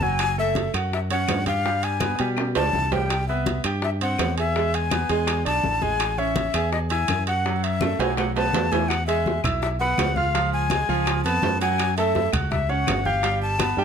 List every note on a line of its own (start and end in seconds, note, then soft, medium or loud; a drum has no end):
0.00 0.68 F#1 medium
0.00 0.32 F#3 medium
0.00 0.32 F#4 medium
0.00 0.39 G#5 loud
0.00 high bongo soft
0.00 high conga medium
0.19 high bongo medium
0.19 high conga soft
0.19 high timbale medium
0.19 claves medium
0.37 0.68 A3 medium
0.37 0.68 A4 medium
0.37 0.72 E5 medium
0.37 high conga soft
0.55 high bongo medium
0.55 high conga medium
0.55 high timbale medium
0.73 1.25 F#2 medium
0.73 1.04 F#4 medium
0.73 1.04 F#5 medium
0.73 high bongo soft
0.73 high conga soft
0.73 high timbale medium
0.73 claves medium
0.92 0.99 E5 medium
0.92 high bongo medium
0.92 high conga soft
1.10 1.40 C#4 medium
1.10 1.41 C#5 medium
1.10 1.45 F#5 loud
1.10 high bongo soft
1.10 high conga soft
1.10 high timbale medium
1.28 2.14 G2 medium
1.28 high bongo soft
1.28 low bongo medium
1.28 high conga medium
1.28 high timbale medium
1.28 low timbale medium
1.28 claves medium
1.46 1.62 G4 medium
1.46 1.85 F5 medium
1.46 1.62 G5 medium
1.46 high bongo soft
1.46 high conga medium
1.46 high timbale medium
1.65 1.95 G3 medium
1.65 1.95 G4 medium
1.65 high bongo medium
1.65 high conga soft
1.83 2.29 G#5 medium
1.83 high conga soft
1.83 high timbale medium
2.00 2.16 B3 medium
2.00 2.16 B4 medium
2.00 high bongo medium
2.00 high conga loud
2.00 high timbale medium
2.00 claves medium
2.19 2.53 B2 medium
2.19 2.49 G3 medium
2.19 2.49 G4 medium
2.19 high bongo soft
2.19 high timbale medium
2.37 high bongo medium
2.37 high conga soft
2.37 high timbale medium
2.37 claves medium
2.55 2.73 C#2 medium
2.55 2.85 D4 medium
2.55 2.86 D5 medium
2.55 2.95 A5 loud
2.55 high bongo soft
2.55 high conga soft
2.55 low timbale loud
2.73 3.59 C2 medium
2.73 high bongo soft
2.73 low bongo medium
2.73 high conga medium
2.92 3.21 G3 medium
2.92 3.22 G4 medium
2.92 3.28 G5 medium
2.92 high bongo soft
2.92 high conga medium
2.92 low timbale medium
3.10 high bongo medium
3.10 high conga soft
3.10 high timbale medium
3.10 claves medium
3.28 3.59 B3 medium
3.28 3.59 B4 medium
3.28 3.62 E5 medium
3.28 high conga soft
3.46 high bongo medium
3.46 high conga medium
3.46 high timbale medium
3.64 4.15 G2 medium
3.64 3.95 G4 medium
3.64 3.95 G5 medium
3.64 high bongo soft
3.64 high timbale medium
3.64 claves medium
3.82 3.90 E5 medium
3.82 high bongo medium
3.82 high conga soft
4.01 4.31 C4 medium
4.01 4.31 C5 medium
4.01 4.35 F#5 loud
4.01 high bongo soft
4.01 high conga soft
4.01 high timbale medium
4.18 5.04 E2 medium
4.18 high bongo soft
4.18 low bongo medium
4.18 high conga medium
4.18 high timbale medium
4.18 low timbale medium
4.18 claves medium
4.37 4.52 G#4 medium
4.37 4.77 E5 medium
4.37 4.52 G#5 medium
4.37 high bongo soft
4.37 high timbale medium
4.55 4.85 G#3 medium
4.55 4.85 G#4 medium
4.55 high bongo medium
4.55 high conga soft
4.74 5.46 G#5 loud
4.74 high conga soft
4.74 high timbale medium
4.90 5.07 B3 medium
4.90 5.07 B4 medium
4.90 high bongo medium
4.90 high conga medium
4.90 high timbale medium
4.90 claves medium
5.09 5.43 E2 loud
5.09 5.39 G#3 medium
5.09 5.40 G#4 medium
5.09 high bongo soft
5.09 high timbale medium
5.27 high bongo medium
5.27 high conga soft
5.27 high timbale medium
5.27 claves medium
5.45 5.63 B1 medium
5.45 5.75 D4 medium
5.45 5.75 D5 medium
5.45 5.84 A5 loud
5.45 high bongo soft
5.45 high conga soft
5.45 high timbale medium
5.63 6.49 A1 medium
5.63 high bongo soft
5.63 low bongo medium
5.63 high conga medium
5.82 6.12 G#3 medium
5.82 6.12 G#4 medium
5.82 6.20 G#5 loud
5.82 high bongo soft
5.82 high conga medium
5.99 high bongo medium
5.99 high conga soft
5.99 high timbale medium
5.99 claves medium
6.17 6.48 C#4 medium
6.17 6.48 C#5 medium
6.17 6.72 E5 medium
6.17 high conga soft
6.36 high bongo medium
6.36 high conga loud
6.36 high timbale medium
6.54 7.05 E2 medium
6.54 6.85 G#4 medium
6.54 6.85 G#5 medium
6.54 high bongo soft
6.54 high conga soft
6.54 high timbale medium
6.54 claves medium
6.72 6.79 D#5 medium
6.72 high bongo medium
6.72 high conga soft
6.90 7.21 E4 medium
6.90 7.21 E5 medium
6.90 7.24 G#5 medium
6.90 high bongo soft
6.90 high conga soft
6.90 high timbale medium
7.08 7.94 F#2 medium
7.08 high bongo soft
7.08 low bongo medium
7.08 high conga medium
7.08 high timbale medium
7.08 claves medium
7.27 7.42 F#4 medium
7.27 7.42 F#5 medium
7.27 7.56 F#5 medium
7.27 high bongo soft
7.27 high timbale medium
7.45 7.75 F#3 medium
7.45 7.75 F#4 medium
7.45 high bongo medium
7.45 high conga soft
7.56 7.65 F#5 medium
7.63 8.01 E5 medium
7.63 high conga soft
7.63 high timbale medium
7.81 7.96 A3 medium
7.81 7.96 A4 medium
7.81 high bongo medium
7.81 high conga medium
7.81 high timbale medium
7.81 claves medium
7.99 8.50 B1 medium
7.99 8.29 F#3 medium
7.99 8.29 F#4 medium
7.99 8.17 G#5 medium
7.99 high bongo soft
7.99 low timbale medium
8.17 8.34 F#5 medium
8.17 high bongo medium
8.17 high conga soft
8.17 low timbale medium
8.17 claves medium
8.36 8.65 B3 medium
8.36 8.66 B4 medium
8.36 8.73 A5 loud
8.36 high bongo soft
8.36 high conga soft
8.36 low timbale medium
8.53 9.38 E2 medium
8.53 high bongo soft
8.53 low bongo medium
8.53 high conga medium
8.53 low timbale medium
8.72 8.87 E3 medium
8.72 8.87 E4 medium
8.72 8.90 G#5 loud
8.72 high bongo soft
8.72 high conga medium
8.72 low timbale medium
8.89 9.06 F#5 loud
8.89 high bongo medium
8.89 high conga soft
8.89 high timbale medium
8.89 claves medium
9.07 9.38 G#3 medium
9.07 9.38 G#4 medium
9.07 9.41 E5 medium
9.07 9.38 G#5 medium
9.07 high conga soft
9.07 high timbale medium
9.26 high bongo medium
9.26 high conga medium
9.26 low timbale medium
9.44 9.95 B1 medium
9.44 9.74 E4 medium
9.44 9.74 E5 medium
9.44 9.74 E6 medium
9.44 high bongo soft
9.44 high conga soft
9.44 low conga medium
9.44 high timbale loud
9.44 claves medium
9.62 9.68 E5 medium
9.62 high bongo medium
9.62 high conga soft
9.80 10.10 B3 medium
9.80 10.10 B4 medium
9.80 10.18 F#5 loud
9.80 10.11 B5 medium
9.80 high bongo soft
9.80 high conga soft
9.98 10.83 C#2 medium
9.98 high bongo soft
9.98 low bongo medium
9.98 high conga medium
9.98 high timbale loud
9.98 low timbale medium
9.98 claves medium
10.16 10.31 F4 medium
10.16 10.52 F5 loud
10.16 10.32 F5 medium
10.16 10.32 F6 medium
10.16 high bongo soft
10.16 high conga medium
10.34 10.64 F3 medium
10.34 10.64 F4 medium
10.34 10.64 F5 medium
10.34 high bongo medium
10.34 high conga soft
10.34 high timbale medium
10.53 11.21 G#5 loud
10.53 high conga soft
10.70 10.85 G#3 medium
10.70 10.86 G#4 medium
10.70 10.86 G#5 medium
10.70 high bongo medium
10.70 high conga loud
10.70 high timbale medium
10.70 low timbale medium
10.70 claves medium
10.89 11.22 C#2 loud
10.89 11.18 F3 medium
10.89 11.19 F4 medium
10.89 11.19 F5 medium
11.06 high bongo medium
11.06 high conga soft
11.06 high timbale loud
11.06 claves medium
11.24 11.42 F2 medium
11.24 11.55 B3 medium
11.24 11.55 B4 medium
11.24 11.58 A5 loud
11.24 11.55 B5 medium
11.24 high bongo soft
11.24 high conga soft
11.24 high timbale medium
11.42 12.27 F#2 medium
11.42 high bongo soft
11.42 low bongo medium
11.42 high conga medium
11.42 low timbale medium
11.61 11.91 F#3 medium
11.61 11.91 F#4 medium
11.61 11.91 F#5 medium
11.61 11.95 G#5 loud
11.61 high bongo soft
11.61 high timbale medium
11.78 high bongo medium
11.78 high conga soft
11.78 high timbale medium
11.78 claves medium
11.97 12.27 A3 medium
11.97 12.27 A4 medium
11.97 12.31 E5 medium
11.97 12.28 A5 medium
11.97 high conga soft
11.97 high timbale medium
12.15 high bongo medium
12.15 high conga medium
12.15 low timbale medium
12.33 12.84 C#2 medium
12.33 12.62 F#4 medium
12.33 12.63 F#5 medium
12.33 12.63 F#6 medium
12.33 high bongo soft
12.33 high conga soft
12.33 low conga medium
12.33 high timbale loud
12.33 claves medium
12.51 12.71 E5 medium
12.51 high bongo medium
12.51 high conga soft
12.51 low conga medium
12.69 12.99 C#4 medium
12.69 12.99 C#5 medium
12.69 13.07 F#5 loud
12.69 12.99 C#6 medium
12.69 high bongo soft
12.69 high conga soft
12.87 13.72 G1 medium
12.87 high bongo soft
12.87 low bongo medium
12.87 high conga medium
12.87 high timbale loud
12.87 low timbale medium
12.87 claves medium
13.05 13.20 G4 medium
13.05 13.42 F5 loud
13.05 13.21 G5 medium
13.05 13.21 G6 medium
13.05 high bongo soft
13.05 high conga medium
13.23 13.53 G3 medium
13.23 13.53 G4 medium
13.23 13.54 G5 medium
13.23 high bongo medium
13.23 high conga soft
13.23 high timbale medium
13.42 13.84 A5 loud
13.42 high conga soft
13.59 13.75 B3 medium
13.59 13.75 B4 medium
13.59 13.75 B5 medium
13.59 high bongo medium
13.59 high conga loud
13.59 high timbale loud
13.59 low timbale medium
13.59 claves medium
13.77 13.85 G2 loud
13.77 13.85 G3 medium
13.77 13.85 G4 medium
13.77 13.85 G5 medium
13.77 high bongo soft